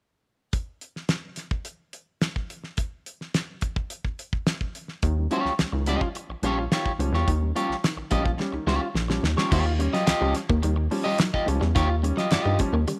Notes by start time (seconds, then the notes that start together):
0.53 kick, closed hi-hat
0.81 closed hi-hat
0.96 snare
1.09 snare, closed hi-hat
1.36 snare, closed hi-hat
1.51 kick
1.65 closed hi-hat
1.93 closed hi-hat
2.22 snare, closed hi-hat
2.36 kick
2.50 closed hi-hat
2.64 snare
2.77 kick, closed hi-hat
3.06 closed hi-hat
3.21 snare
3.34 snare, closed hi-hat
3.61 kick, closed hi-hat
3.76 kick
3.90 closed hi-hat
4.04 kick
4.19 closed hi-hat
4.33 kick
4.47 snare, closed hi-hat
4.61 kick
4.75 closed hi-hat
4.88 snare
5.03 D#2 D#3, kick, closed hi-hat
5.17 G3 C#4
5.31 F3 G3 C#4 F4 G4 C#5, closed hi-hat
5.45 C#2, snare
5.59 C#2 G3 C#4, muted clean electric guitar stroke, snare, closed hi-hat
5.72 C#2 D#3, muted clean electric guitar stroke
5.86 F3 G3 C#4 F4 G4 D#5, snare, closed hi-hat
6.01 muted clean electric guitar stroke, kick
6.15 muted clean electric guitar stroke, closed hi-hat
6.29 A#1, muted clean electric guitar stroke
6.43 A#1 F3 G3 C#4 F4 G4 C#5, closed hi-hat
6.59 muted clean electric guitar stroke
6.72 D#3 F4 G4 C#5, snare, closed hi-hat
6.86 kick
6.99 C#2 F3 G3 C#4, muted clean electric guitar stroke, closed hi-hat
7.12 E2 G3 C#4 F4 G4 C#5, snare
7.28 D#2 D#3, kick, closed hi-hat
7.42 G3 C#4
7.55 F3 G3 C#4 F4 G4 C#5, closed hi-hat
7.69 A#1, snare
7.84 D#3, muted clean electric guitar stroke, snare, closed hi-hat
7.97 A#1, muted clean electric guitar stroke
8.11 A#1 F3 G3 C#4 F4 G4 D#5, kick, closed hi-hat
8.25 G3 C#4, muted clean electric guitar stroke, kick
8.38 G3 C#4, muted clean electric guitar stroke, snare
8.52 C#2 D#3, muted clean electric guitar stroke
8.67 C#2 G3 C#4 F4 G4 C#5, snare
8.82 muted clean electric guitar stroke
8.95 A#1, muted clean electric guitar stroke, snare
9.08 F3 G3 C#4, muted clean electric guitar stroke, snare
9.23 D#2 D#3, snare
9.36 F3 G3 C#4 F4 G4 C#5, snare
9.51 D#2 D#3 F4 G4 C#5, kick, crash
9.66 muted clean electric guitar stroke
9.79 G3 C#4, muted clean electric guitar stroke, closed hi-hat
9.93 F#3 F4 G4 D#5, snare, closed hi-hat
10.06 C#2 F4 G4 D#5, snare, clap, closed hi-hat
10.20 C#2 F3 G3 C#4
10.35 muted clean electric guitar stroke, snare, closed hi-hat
10.49 D#2 D#3 A#3, muted clean electric guitar stroke, kick
10.63 D#2 D#3 G3, muted clean electric guitar stroke, closed hi-hat
10.76 muted clean electric guitar stroke
10.91 F3 G3 C#4, muted clean electric guitar stroke, open hi-hat
11.04 G3 C#4 F4 G4 D#5
11.18 D#3 F#3, muted clean electric guitar stroke, snare, clap, closed hi-hat
11.34 F4 G4 D#5, muted clean electric guitar stroke, kick
11.46 C#2 F3 G3 C#4, muted clean electric guitar stroke, closed hi-hat
11.61 E2 G3 C#4, muted clean electric guitar stroke, snare
11.74 D#2 D#3 F4 G4 C#5, kick, closed hi-hat
11.90 muted clean electric guitar stroke
12.02 G3 C#4, muted clean electric guitar stroke, closed hi-hat
12.17 F#3 F4 G4 D#5, snare, closed hi-hat
12.31 G2 G3 C#4 E4 F#4 D5, snare, clap, closed hi-hat
12.42 G2 D#3 G3 F4 G4 D#5
12.59 F3 G3 C#4, muted clean electric guitar stroke, kick, closed hi-hat
12.73 D#2 A#3, muted clean electric guitar stroke
12.87 D#3 G3 C#4, muted clean electric guitar stroke, closed hi-hat